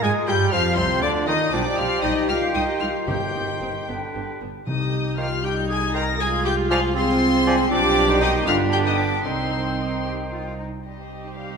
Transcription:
0.02 G#2 G#3 F4 G#4 G#5 G#6
0.27 G2 G3 G4 G5 G6
0.52 F2 F3 F4 F5 F6
0.77 C2 C3 C4 C5 C6
1.01 D2 D3 D4 D5 D6
1.26 D#2 D#3 D#4 D#5 D#6
1.51 B1 F3 G3 D4 F4 G4 D5 G5 D6
1.77 B1 G3 F4 F5 F6
2.02 B1 G3 D#4 F4 D#5 D#6
2.28 C2 D#3 G3 D#4 F4 C5 F5 G5 F6
2.54 C2 G3 D#4 D#5 D#6
2.80 C2 G3 D#4 F4 F5 F6
3.07 G1 G2 D#3 C4 D#4 G4 C5 G5 G6
3.34 G1 C4 D#4
3.61 G1 C4 D#4
3.88 G1 D3 B3 D4 B4 G5
4.15 G1 B3 D4
4.40 G1 B3 D4
4.67 C2 C3 G3 D#4 G4 D#5 D#6
5.18 D#3 F4 C5 F5 G5 F6
5.43 D#4 G4 G5 G6
5.69 G#4 G#5 G#6
5.94 D#3 A#4 C5 G5 A#5 A#6
6.19 G#3 F4 G#4 G#5 G#6
6.44 G4 G5 G6
6.70 F3 F4 D5 F5 G#5 F6
6.95 G#3 C4 G#4 C5 C6
7.47 F3 D5 G#5
7.71 B1 F3 G3 D4 F4 G4 D5 G5 D6
8.08 D#3 D#4 C5
8.21 D#4 D#5 D#6
8.46 G1 D3 B3 D4 F4 B4 F5 G5 F6
8.72 G4 G5 G6
8.85 D#4 D#5 D#6
8.98 D4 D5 D6
9.24 C2 D#3 C4 D#4 C5 G5 C6
10.06 G4
10.33 F4
10.59 D#4
10.84 C2 G3 C4 D#4 G4 D#5
10.98 C4
11.11 D#4
11.25 C4
11.36 G3 F5
11.49 C4

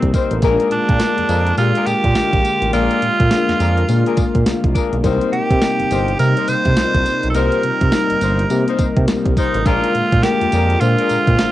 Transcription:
Already playing: C3 G3 A#3 C4 D#4 G4 A#4 C5
0.02 C2, kick, closed hi-hat
0.14 C4 D#4 A#4 C5, kick, closed hi-hat, tambourine
0.31 A1, closed hi-hat
0.42 A#1 D3 G#3 A#3 D4 F4 G#4 A#4, kick, closed hi-hat, tambourine
0.60 closed hi-hat
0.71 A#2 D4, closed hi-hat
0.89 A#2, kick, closed hi-hat
0.99 G#3 A#3 D4 F4 A#4, snare, closed hi-hat, tambourine
1.18 F2, closed hi-hat
1.29 F2 A#3 D4 G#4 A#4, closed hi-hat, tambourine
1.47 closed hi-hat
1.57 A#2 G#3 A#3 D4 F4 G4, closed hi-hat, tambourine
1.75 A#3 D4 G#4 A#4, closed hi-hat
1.87 A#2 G4, closed hi-hat, tambourine
2.04 A#2, kick, closed hi-hat
2.15 A#1 G#3 A#3 D4 F4 A#4, snare, closed hi-hat, tambourine
2.33 A#1, kick, closed hi-hat
2.45 closed hi-hat, tambourine
2.62 A1, closed hi-hat
2.73 A#1 G#3 A#3 D4 F4 G#4 A#4, closed hi-hat, tambourine
2.91 closed hi-hat
3.02 A#2, closed hi-hat
3.20 A#2, kick, closed hi-hat
3.31 G#3 A#3 D4 F4 A#4, snare, closed hi-hat, tambourine
3.49 F2, snare, closed hi-hat
3.60 F2 A#3 D4 G#4 A#4, closed hi-hat, tambourine
3.77 closed hi-hat
3.88 A#2 G#3 A#3 D4 F4 A#4, closed hi-hat, tambourine
4.06 A#3 D4 G#4 A#4, closed hi-hat
4.17 A#2, kick, closed hi-hat, tambourine
4.35 A#2, kick, closed hi-hat
4.45 C2 G#3 A#3 D4 F4 A#4, snare, closed hi-hat, tambourine
4.64 C2, kick, closed hi-hat
4.75 A#3 D4 G#4 A#4, kick, closed hi-hat, tambourine
4.93 B1, closed hi-hat
5.03 C2 C3 G3 A#3 C4 D#4 A#4 C5, kick, closed hi-hat, tambourine
5.21 closed hi-hat
5.33 C3 G4, closed hi-hat
5.50 C3, kick, closed hi-hat
5.61 G3 A#3 C4 D#4 A#4, snare, closed hi-hat, tambourine
5.80 G1, closed hi-hat
5.90 G1 C4 D#4 A#4 C5, closed hi-hat, tambourine
6.08 closed hi-hat
6.19 C3 G3 A#3 C4 D#4 A#4, closed hi-hat, tambourine
6.37 C4 D#4 A#4 C5, closed hi-hat
6.48 C3 C5, closed hi-hat, tambourine
6.65 C3, kick, closed hi-hat
6.77 C2 G3 A#3 C4 D#4 F4, snare, closed hi-hat, tambourine
6.95 C2, kick, closed hi-hat
7.06 closed hi-hat, tambourine
7.23 B1, closed hi-hat
7.30 A4
7.34 C2 G3 A#3 C4 D#4 A#4 C5, closed hi-hat, tambourine
7.52 closed hi-hat
7.63 C3, closed hi-hat
7.81 C3, kick, closed hi-hat
7.92 G3 A#3 C4 D#4 A#4, snare, closed hi-hat, tambourine
8.10 G1, closed hi-hat
8.21 G1 C4 D#4 A#4 C5, closed hi-hat, tambourine
8.39 closed hi-hat
8.50 C3 G3 A#3 C4 D#4 A#4, closed hi-hat, tambourine
8.68 C4 D#4 A#4 C5, closed hi-hat
8.79 C3, kick, closed hi-hat, tambourine
8.96 C3, kick, closed hi-hat
9.08 C2 G3 A#3 C4 D#4 A#4, snare, closed hi-hat, tambourine
9.25 C2, kick, closed hi-hat
9.37 C4 D#4 A#4 C5, kick, closed hi-hat, tambourine
9.54 A1, closed hi-hat
9.65 A#1 D3 G#3 A#3 D4 F4 G#4 A#4, kick, closed hi-hat, tambourine
9.84 closed hi-hat
9.95 A#2, closed hi-hat
10.12 A#2, kick, closed hi-hat
10.23 G#3 A#3 D4 F4 G4 A#4, snare, closed hi-hat, tambourine
10.41 F2, closed hi-hat
10.52 F2 A#3 D4 G#4 A#4, closed hi-hat, tambourine
10.70 closed hi-hat
10.80 A#2 G#3 A#3 D4 F4 C5, closed hi-hat, tambourine
10.98 A#3 D4 G#4 A#4, closed hi-hat
11.09 A#2, closed hi-hat, tambourine
11.27 A#2, kick, closed hi-hat
11.39 A#1 G#3 A#3 D4 F4 A#4, snare, closed hi-hat, tambourine

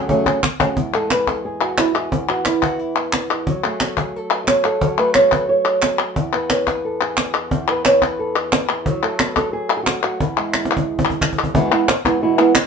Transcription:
0.09 F#2 C#3 F#3 A3 C#4 G#4, cajon bass
0.26 F#3 A3 C#4 G#4, cajon bass
0.42 muted nylon-string guitar stroke, cajon bass, clap
0.60 F#3 A3 C#4 G#4, cajon bass
0.76 E2, cajon bass
0.93 G#3 A4
1.10 B4, cajon slap, clap
1.27 A4, cajon bass, cajon slap
1.45 G#4
1.62 F#4
1.78 E4, cajon slap, clap
1.96 G#4
2.12 E2, cajon bass
2.29 E3 F#4
2.45 E4, cajon slap, clap
2.63 F#4, cajon bass
2.79 E4
2.97 B3
3.13 cajon slap, clap
3.30 E2
3.47 F#3, cajon bass
3.63 A3 G#4, cajon slap
3.80 F#4, cajon slap, clap
3.97 G#4, cajon bass
4.16 A4
4.32 B4
4.44 C#5 D#5, cajon slap, clap
4.65 A4
4.81 F#3, cajon bass
4.98 A3 B4
5.14 C#5, cajon slap, clap
5.32 B4, cajon bass
5.49 C#5
5.82 cajon slap, clap
6.00 cajon slap
6.16 E2, cajon bass
6.34 B3 B4
6.50 C#5, cajon slap, clap
6.67 B4, cajon bass, cajon slap
6.85 A4
7.02 G#4
7.17 cajon slap, clap
7.34 clap
7.51 E2, cajon bass
7.69 B3 B4
7.85 C#5, cajon slap, clap
8.02 B4, cajon bass, cajon slap
8.19 A4
8.36 G#4
8.52 cajon slap, clap
8.70 E2
8.86 F#3, cajon bass
9.02 A3 A4
9.19 B4, cajon slap, clap
9.36 A4, cajon bass, cajon slap
9.53 G#4
9.69 F#4
9.77 G#4
9.83 F#4, cajon slap, clap
10.03 F#4, clap
10.20 E2 E4, cajon bass
10.37 G#3, cajon slap
10.54 cajon slap, clap
10.65 cajon slap
10.77 cajon bass
10.99 cajon bass
11.10 cajon bass
11.21 cajon bass, clap
11.33 cajon bass
11.44 cajon bass
11.54 E2 B2 E3 G#3 B3 E4, cajon bass
11.71 E3 G#3 B3 E4
11.88 muted nylon-string guitar stroke, cajon slap, clap
12.05 E3 G#3 B3 E4, cajon bass, cajon slap
12.21 E2 B2 E3 G#3 B3 E4
12.39 E3 G#3 B3 E4
12.55 muted nylon-string guitar stroke, cajon slap, clap

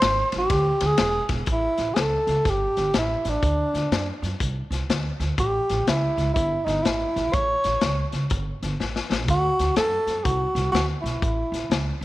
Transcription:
Already playing: C5
0.02 G#1, snare, ride
0.32 G#1, snare, ride
0.38 G4
0.50 D2, kick, snare, ride
0.81 D2, snare, ride
0.86 G#4
0.98 E1, snare, ride
1.29 E1, kick, snare, ride
1.46 A1, kick, closed hi-hat
1.51 E4
1.78 A1, snare, closed hi-hat
1.94 C#2 G#4, snare, closed hi-hat
2.00 A4
2.27 C#2, snare, closed hi-hat
2.45 G1, kick, snare, closed hi-hat
2.50 G4
2.77 G1, snare, closed hi-hat
2.94 A1, snare, closed hi-hat
2.98 E4
3.25 A1, snare, closed hi-hat
3.30 D4
3.42 D2, kick, closed hi-hat
3.74 D2, snare, closed hi-hat
3.91 F#2, snare, closed hi-hat
4.22 F#2, snare, closed hi-hat
4.40 C2, kick, closed hi-hat
4.71 C2, snare, closed hi-hat
4.90 D2, snare, closed hi-hat
5.20 D2, snare, closed hi-hat
5.38 A1 G4, kick, closed hi-hat
5.70 A1, snare, closed hi-hat
5.87 C#2 E4, snare, closed hi-hat
6.17 C#2, snare, closed hi-hat
6.34 G1 E4, kick, closed hi-hat
6.65 G1 D#4, snare, closed hi-hat
6.83 A1 E4, snare, closed hi-hat
7.16 A1, snare, closed hi-hat
7.33 A1 C#5, kick, closed hi-hat
7.64 A1, snare, closed hi-hat
7.81 C#2, snare, closed hi-hat
8.12 C#2, snare, closed hi-hat
8.30 G1, kick, closed hi-hat
8.62 G1, snare, closed hi-hat
8.80 A1, snare
8.96 snare
9.11 A1, snare
9.28 D2 F#4, kick, snare, closed hi-hat
9.59 D2, snare, closed hi-hat
9.76 F#2 A4, snare, closed hi-hat
10.07 F#2, snare, closed hi-hat
10.24 C2 F#4, kick, closed hi-hat
10.55 C2, snare, closed hi-hat
10.72 D2 F#4, snare, closed hi-hat
11.02 B1 E4, closed hi-hat
11.06 snare
11.22 A1, kick, closed hi-hat
11.52 A1, snare, closed hi-hat
11.70 C#2, snare, closed hi-hat
12.01 C#2

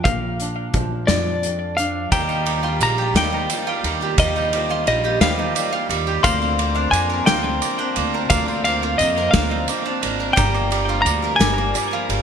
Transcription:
Already playing: F3
0.04 A#1 A#2 F5, kick, closed hi-hat
0.40 D4, closed hi-hat
0.74 A#1 F3, kick, closed hi-hat
1.07 F2 D5, snare, closed hi-hat
1.12 F4
1.43 F2, closed hi-hat
1.77 D4 F5, closed hi-hat
2.12 D#2 D#3 F3 G3 A#3 D#4 F4 G4 A#4 D#5 G5 A#5, kick, ride, tambourine
2.29 D#4, tambourine
2.46 F3 G3 A#3 D#4 F4 G4 A#4 D#5, ride
2.63 A#3 F4 G4
2.80 A#1 G3 D#4 F4 A#4 D#5 A#5, ride, tambourine
2.98 A#3 F4 G4
3.14 D#2 D#3 F3 G3 A#3 D#4 F4 A#4 D#5 G5, snare, ride
3.18 G4
3.33 D#4
3.49 F3 G3 A#3 D#4 F4 G4 A#4 D5, ride, tambourine
3.67 A#3 F4 G4
3.84 D#2 G3 D#4 F4 A#4 D#5, ride, tambourine
4.01 A#3 F4 G4
4.18 D#2 D#3 F3 G3 A#3 D#4 F4 G4 A#4 D#5 F5, kick, ride, tambourine
4.36 D#4, tambourine
4.53 F3 G3 A#3 D#4 F4 G4 A#4 C5, ride
4.69 A#3 F4 G4
4.86 A#1 G3 D#4 F4 A#4 D#5, ride
5.04 A#3 F4 G4
5.20 D#2 D#3 F3 G3 A#3 D#4 F4 G4 A#4 C5 F5, snare, ride
5.39 D#4
5.55 F3 G3 A#3 D#4 F4 G4 A#4 D5, ride, tambourine
5.73 A#3 F4 G4
5.89 D#2 G3 D#4 F4 A#4 D#5, ride, tambourine
6.07 A#3 F4 G4
6.23 D2 D3 F3 A#3 C4 D4 F4 A#4 C5 D5 F5 C6, kick, ride, tambourine
6.42 C4, tambourine
6.59 F3 A#3 C4 D4 F4 A#4 C5 D5, ride
6.75 C4 D4 A#4
6.91 F2 A#3 D4 F4 C5 D5 G#5, ride, tambourine
7.10 C4 D4 A#4
7.26 D2 D3 F3 A#3 C4 D4 F4 A#4 F5 G5, snare, ride
7.44 C4
7.62 F3 A#3 C4 D4 F4 A#4 C5 F5, ride, tambourine
7.78 C4 D4 A#4
7.96 D2 A#3 D4 F4 C5 D5, ride, tambourine
8.14 C4 D4 A#4
8.30 D2 D3 F3 A#3 C4 D4 F4 A#4 D5 F5, kick, ride, tambourine
8.48 C4, tambourine
8.64 F3 A#3 C4 D4 F4 A#4 C5 F5, ride, tambourine
8.82 C4 D4 F4 A#4
8.98 F2 A#3 C4 F4 C5 D#5, ride, tambourine
9.02 F5
9.16 C4 D4 A#4, tambourine
9.31 D2 D3 A#3 F5, kick, snare, ride
9.35 F3 A#3 C4 D4 F4 A#4 C5 F5
9.51 C4
9.68 F3 A#3 C4 D4 F4 A#4 C5 F5, ride, tambourine
9.85 C4 D4 A#4
10.03 G#1 A#3 D4 F4 C5 D5, ride, tambourine
10.19 C4 D4 A#4
10.33 G2 G3 G5, ride
10.37 G1 G2 D3 F3 G3 A#3 D4 F4 A#4 D5 A#5, kick, tambourine
10.54 A#3, tambourine
10.71 F3 G3 A#3 D4 F4 A#4 D5, ride
10.88 F3 A#3 D4 F4 A#4
11.02 D2 A#5
11.06 G3 D4 F4 A#4 D5, ride, tambourine
11.22 F3 A#3 D4 A#4
11.36 G1 G2 D3 G#5
11.40 F3 G3 A#3 D4 F4 A#4, snare, ride
11.58 A#3
11.74 F3 G3 A#3 D4 F4 A#4 D5, ride, tambourine
11.91 F3 A#3 D4 F4 A#4
12.09 G1 G3 D4 F4 A#4 D5, ride, tambourine

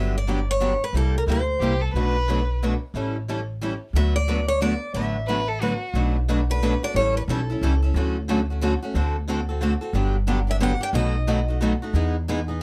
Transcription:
Already playing: G1 D3 F#3 B3 D4 G4 E5
0.18 D5
0.28 D3 F#3 B3 D4 G4
0.51 C#5
0.60 D3 F#3 B3 D4 G4
0.84 B4
0.93 C2 C3 G3 A#3 E4
0.97 G4 A4
1.18 A#4
1.27 D2 C3 G3 A#3 E4 G4
1.32 C5
1.60 C2 C3 G3 A#3 E4 G4
1.81 A4
1.93 B1 B2 F#3 A3 D4 F#4 B4
2.29 B2 F#3 A3 D4 F#4 B4
2.63 B2 F#3 A3 D4 F#4 B4
2.94 A1 E3 G3 C#4 E4 A4
3.29 E3 G3 C#4 E4 A4
3.61 E3 G3 C#4 E4 A4
3.93 D2 D3 F#3 A3 B3 D4 F#4 B4 E5
4.16 D5
4.28 D3 F#3 A3 B3 D4 F#4 B4
4.48 C#5
4.61 D3 F#3 A3 B3 D4 F#4 B4 D5
4.94 A1 D3 F#3 A3 B3 D4 F#4 B4 E5
5.27 D3 F#3 A3 B3 D4 F#4 B4
5.48 A4
5.61 D3 F#3 A3 B3 D4 F#4 B4
5.94 B1 B2 F#3 A3 D4 F#4 B4
6.29 B2 F#3 A3 D4 F#4 B4
6.50 A3 D4 F#4 B4
6.62 B2 F#3 A3 D4 F#4 B4
6.83 A3 D4 F#4 D5
6.94 A1 E3 G3 C#4 E4 A4 C#5
7.17 B4
7.28 B1 E3 G3 C#4 E4 A4
7.50 C#4 E4 A4
7.61 C#2 E3 G3 C#4 E4 A4
7.82 C#4 E4 A4
7.94 D2 D3 F#3 A3 C#4 F#4 A4
8.29 D3 F#3 A3 C#4 F#4 A4
8.50 A3 C#4 F#4
8.61 D3 F#3 A3 C#4 F#4 A4
8.82 A3 C#4 F#4
8.94 D2 D3 A3 C4 F#4 A4
9.28 D3 A3 C4 F#4 A4
9.49 C4 F#4 A4
9.62 D3 A3 C4 F#4 A4
9.81 C4 F#4 A4
9.93 G1 D3 F#3 B3 D4 G4
10.27 D3 F#3 B3 D4 G4
10.47 B3 D4 G4 E5
10.60 D3 F#3 B3 D4 G4 F#5
10.81 B3 D4 G4 G5
10.93 B1 B2 D#3 F#3 A3 B3 D#4 F#4 A4 D#5
11.27 B2 D#3 F#3 A3 B3 D#4 F#4 A4
11.48 A3 D#4 F#4
11.61 B2 D#3 F#3 A3 B3 D#4 F#4 A4
11.82 A3 D#4 F#4
11.93 E2 E3 G#3 B3 D#4 G#4
12.28 E3 G#3 B3 D#4 G#4
12.48 B3 D#4 G#4

